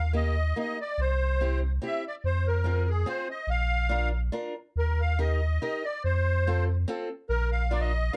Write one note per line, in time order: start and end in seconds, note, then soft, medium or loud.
0.00 0.53 D#2 medium
0.00 0.13 F5 medium
0.13 0.34 A#3 medium
0.13 0.34 D#4 soft
0.13 0.34 G4 medium
0.13 0.58 D#5 medium
0.56 0.76 A#3 soft
0.56 0.77 D#4 soft
0.56 0.77 G4 soft
0.56 0.79 D#5 medium
0.81 1.00 D5 medium
0.98 1.79 C2 medium
0.98 1.60 C5 medium
1.41 1.61 C4 soft
1.41 1.61 E4 soft
1.41 1.61 G4 medium
1.82 2.02 C4 medium
1.82 2.02 E4 soft
1.82 2.03 G4 medium
1.86 2.05 E5 medium
2.07 2.15 D5 medium
2.24 3.05 F2 medium
2.24 2.47 C5 medium
2.47 2.89 A#4 medium
2.64 2.85 C4 medium
2.64 2.85 F4 soft
2.64 2.85 G#4 medium
2.89 3.08 G#4 medium
3.06 3.26 C4 medium
3.06 3.27 F4 soft
3.06 3.27 G#4 medium
3.06 3.28 C5 medium
3.30 3.50 D#5 medium
3.47 4.30 A#1 medium
3.47 4.09 F5 medium
3.89 4.10 D4 medium
3.89 4.10 F4 soft
3.89 4.11 A#4 medium
4.32 4.53 D4 medium
4.32 4.53 F4 medium
4.32 4.53 A#4 medium
4.76 5.59 D#2 medium
4.76 5.01 A#4 medium
5.01 5.19 F5 medium
5.19 5.39 D#4 medium
5.19 5.39 G4 medium
5.19 5.40 A#4 medium
5.19 5.62 D#5 medium
5.62 5.82 D#4 medium
5.62 5.82 G4 soft
5.62 5.82 A#4 medium
5.62 5.85 D#5 medium
5.85 6.03 D5 medium
6.04 6.86 F2 loud
6.04 6.65 C5 medium
6.47 6.67 C4 medium
6.47 6.67 F4 medium
6.47 6.67 A4 medium
6.88 7.08 C4 medium
6.88 7.08 F4 medium
6.88 7.08 A4 medium
7.29 8.10 A#1 loud
7.29 7.50 A#4 medium
7.52 7.72 F5 medium
7.71 7.91 D4 medium
7.71 7.91 F4 medium
7.71 7.91 A#4 medium
7.71 7.81 D5 medium
7.81 8.13 D#5 medium
8.12 8.16 D4 medium
8.12 8.16 F5 medium